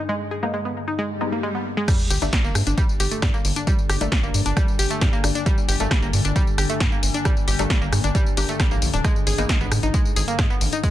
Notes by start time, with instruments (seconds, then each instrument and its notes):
Already playing: synth drone G2 D3
0.09 synth arpeggio sound G#3
0.31 synth arpeggio sound G#4
0.43 synth stab G#3 B3 D#4, synth arpeggio sound A#3
0.54 synth arpeggio sound G#3
0.65 synth arpeggio sound B3
0.88 synth arpeggio sound D#4
0.98 synth arpeggio sound G#3, swell
1.21 synth stab G#3 B3 D#4, synth arpeggio sound G#3
1.32 synth arpeggio sound A#3
1.43 synth arpeggio sound G#3
1.55 synth arpeggio sound B3
1.77 synth arpeggio sound G#3
1.88 synth drone G2 D3, synth arpeggio sound G3, kick, cross-stick, closed hi-hat, tambourine, crash, sub drop
2.00 tambourine
2.10 analog synth bass G1, synth arpeggio sound G4, open hi-hat, tambourine
2.22 analog synth bass G1, synth stab G3 A#3 D4, synth arpeggio sound A3, closed hi-hat, tambourine
2.33 synth arpeggio sound G3, kick, snare, closed hi-hat, tambourine
2.44 analog synth bass G1, synth arpeggio sound A#3, tambourine
2.55 analog synth bass G2, cross-stick, open hi-hat, tambourine
2.67 analog synth bass G1, synth arpeggio sound D4, closed hi-hat, tambourine
2.78 synth arpeggio sound G3, kick, closed hi-hat, tambourine
2.89 tambourine
3.00 analog synth bass G1, synth arpeggio sound G4, open hi-hat, tambourine
3.11 synth arpeggio sound A3, closed hi-hat, tambourine
3.22 analog synth bass G2, synth arpeggio sound G3, kick, cross-stick, snare, closed hi-hat, tambourine
3.34 synth arpeggio sound A#3, tambourine
3.45 analog synth bass G1, open hi-hat, tambourine
3.56 synth arpeggio sound D4, closed hi-hat, tambourine
3.67 synth arpeggio sound G3, kick, closed hi-hat, tambourine
3.79 tambourine
3.90 analog synth bass G1, synth arpeggio sound G4, cross-stick, open hi-hat, tambourine
4.01 analog synth bass G1, synth stab G3 A#3 D4, synth arpeggio sound A3, closed hi-hat, tambourine
4.12 synth arpeggio sound G3, kick, snare, closed hi-hat, tambourine
4.23 analog synth bass G1, synth arpeggio sound A#3, tambourine
4.34 analog synth bass G2, open hi-hat, tambourine
4.46 analog synth bass G1, synth arpeggio sound D4, closed hi-hat, tambourine
4.57 synth arpeggio sound G3, kick, cross-stick, closed hi-hat, tambourine
4.68 tambourine
4.79 analog synth bass G1, synth arpeggio sound G4, open hi-hat, tambourine
4.90 synth arpeggio sound A3, closed hi-hat, tambourine
5.01 analog synth bass G2, synth arpeggio sound G3, kick, snare, closed hi-hat, tambourine
5.13 synth arpeggio sound A#3, tambourine
5.24 analog synth bass G1, synth stab G3 A#3 D4, cross-stick, open hi-hat, tambourine
5.35 synth arpeggio sound D4, closed hi-hat, tambourine
5.46 synth arpeggio sound G3, kick, closed hi-hat, tambourine
5.58 tambourine
5.69 analog synth bass G1, synth arpeggio sound G4, open hi-hat, tambourine
5.80 analog synth bass G1, synth stab G3 A#3 D4, synth arpeggio sound A3, closed hi-hat, tambourine
5.91 synth arpeggio sound G3, kick, cross-stick, snare, closed hi-hat, tambourine
6.02 analog synth bass G1, synth arpeggio sound A#3, tambourine
6.13 analog synth bass G2, open hi-hat, tambourine
6.25 analog synth bass G1, synth arpeggio sound D4, closed hi-hat, tambourine
6.36 synth arpeggio sound G3, kick, closed hi-hat, tambourine
6.47 tambourine
6.58 analog synth bass G1, synth arpeggio sound G4, cross-stick, open hi-hat, tambourine
6.70 synth arpeggio sound A3, closed hi-hat, tambourine
6.80 analog synth bass G2, synth arpeggio sound G3, kick, snare, closed hi-hat, tambourine
6.92 synth arpeggio sound A#3, tambourine
7.03 analog synth bass G1, open hi-hat, tambourine
7.14 synth arpeggio sound D4, closed hi-hat, tambourine
7.25 synth arpeggio sound G3, kick, cross-stick, closed hi-hat, tambourine
7.37 tambourine
7.48 analog synth bass G1, synth arpeggio sound G4, open hi-hat, tambourine
7.59 analog synth bass G1, synth stab G3 A#3 D4, synth arpeggio sound A3, closed hi-hat, tambourine
7.70 synth arpeggio sound G3, kick, snare, closed hi-hat, tambourine
7.82 analog synth bass G1, synth arpeggio sound A#3, tambourine
7.92 analog synth bass G2, cross-stick, open hi-hat, tambourine
8.04 analog synth bass G1, synth arpeggio sound D4, closed hi-hat, tambourine
8.15 synth arpeggio sound G3, kick, closed hi-hat, tambourine
8.26 tambourine
8.37 analog synth bass G1, synth stab G3 A#3 D4, synth arpeggio sound G4, open hi-hat, tambourine
8.49 synth arpeggio sound A3, closed hi-hat, tambourine
8.60 synth arpeggio sound G3, kick, cross-stick, snare, closed hi-hat, tambourine
8.71 analog synth bass A1, synth arpeggio sound A#3, tambourine
8.82 analog synth bass A#1, open hi-hat, tambourine
8.94 analog synth bass D1, synth arpeggio sound D4, closed hi-hat, tambourine
9.04 synth arpeggio sound G#3, kick, cross-stick, closed hi-hat, tambourine
9.16 tambourine
9.27 analog synth bass G#1, synth arpeggio sound G#4, open hi-hat, tambourine
9.38 analog synth bass G#1, synth stab G#3 B3 D#4, synth arpeggio sound A#3, closed hi-hat, tambourine
9.49 synth arpeggio sound G#3, kick, snare, closed hi-hat, tambourine
9.61 analog synth bass G#1, synth arpeggio sound B3, tambourine
9.72 analog synth bass G#2, cross-stick, open hi-hat, tambourine
9.83 analog synth bass G#1, synth arpeggio sound D#4, closed hi-hat, tambourine
9.94 synth arpeggio sound G#3, kick, closed hi-hat, tambourine
10.05 tambourine
10.16 analog synth bass G#1, synth arpeggio sound G#4, open hi-hat, tambourine
10.28 synth arpeggio sound A#3, closed hi-hat, tambourine
10.39 analog synth bass G#2, synth arpeggio sound G#3, kick, cross-stick, snare, closed hi-hat, tambourine
10.50 synth arpeggio sound B3, tambourine
10.61 analog synth bass G#1, open hi-hat, tambourine
10.73 synth arpeggio sound D#4, closed hi-hat, tambourine
10.84 synth arpeggio sound G#3, kick, closed hi-hat, tambourine